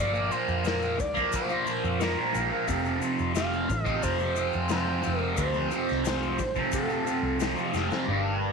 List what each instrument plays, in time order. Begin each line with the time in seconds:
Already playing: picked electric bass G1, distorted electric guitar A#2, tonewheel organ F3 A#3 D4 A#4
0.00 distorted electric guitar F3 A#3, analog synth lead D5
0.13 distorted electric guitar F3 A#3, shaker
0.29 distorted electric guitar A#2 F3 A#3, analog synth lead C5, open hi-hat, shaker
0.48 picked electric bass F2, shaker
0.64 distorted electric guitar A#2 F3 A#3, analog synth lead A#4, snare, open hi-hat, shaker
0.82 shaker
0.98 picked electric bass D2, analog synth lead D5, muted distorted electric guitar stroke, kick, open hi-hat, shaker
1.14 distorted electric guitar F3 A#3, kick, shaker
1.32 picked electric bass A#1, analog synth lead C5, kick, open hi-hat, shaker
1.49 distorted electric guitar F3 A#3, shaker
1.65 distorted electric guitar A#2 F3 A#3, open hi-hat, shaker
1.84 picked electric bass F2, shaker
1.99 distorted electric guitar A#2 F3 A#3, analog synth lead A#4, snare, open hi-hat, shaker
2.17 distorted electric guitar F3 A#3
2.33 picked electric bass A#1, distorted electric guitar A#2 F3 A#3, open hi-hat, shaker
2.51 distorted electric guitar F3 A#3
2.67 picked electric bass F1, distorted electric guitar F2 C3 F3, tonewheel organ A3 C4 A4, kick, open hi-hat, shaker
2.83 distorted electric guitar C3 F3, shaker
2.99 distorted electric guitar F2 C3 F3, open hi-hat, shaker
3.19 picked electric bass F1, shaker
3.33 distorted electric guitar F2 C3 F3, analog synth lead F5, snare, open hi-hat, shaker
3.53 shaker
3.69 picked electric bass A1, muted distorted electric guitar stroke, kick, open hi-hat, shaker
3.84 distorted electric guitar C3 F3, analog synth lead D#5, kick, shaker
4.02 picked electric bass F1, analog synth lead C5, kick, open hi-hat, shaker
4.19 distorted electric guitar C3 F3, shaker
4.35 distorted electric guitar F2 C3 F3, open hi-hat, shaker
4.53 picked electric bass F2, shaker
4.69 distorted electric guitar F2 C3 F3, analog synth lead C5, snare, open hi-hat, shaker
4.86 distorted electric guitar C3 F3
5.02 distorted electric guitar F2 C3 F3, open hi-hat, shaker
5.07 picked electric bass F1
5.18 distorted electric guitar C3 F3, analog synth lead A#4
5.35 picked electric bass D2, distorted electric guitar F2 C3 F3, analog synth lead C5, kick, open hi-hat, shaker
5.53 distorted electric guitar C3 F3, shaker
5.70 distorted electric guitar F2 C3 F3, open hi-hat, shaker
5.89 picked electric bass C2, snare, shaker
6.03 distorted electric guitar F2 C3 F3, snare, open hi-hat, shaker
6.22 shaker
6.38 picked electric bass A1, muted distorted electric guitar stroke, kick, open hi-hat, shaker
6.55 distorted electric guitar C3 F3, kick, shaker
6.72 picked electric bass F1, analog synth lead A4, kick, open hi-hat, shaker
6.89 distorted electric guitar C3 F3, shaker
7.05 distorted electric guitar F2 C3 F3, open hi-hat, shaker
7.23 picked electric bass C2
7.37 distorted electric guitar F2 C3 F3, open hi-hat, shaker
7.42 snare
7.55 distorted electric guitar C3 F3, shaker
7.72 picked electric bass F1, distorted electric guitar F2 C3 F3, shaker
7.76 snare
7.89 distorted electric guitar C3 F3, snare, shaker
8.07 picked electric bass G1, distorted electric guitar G2, tonewheel organ G3 A#3 D4 A#4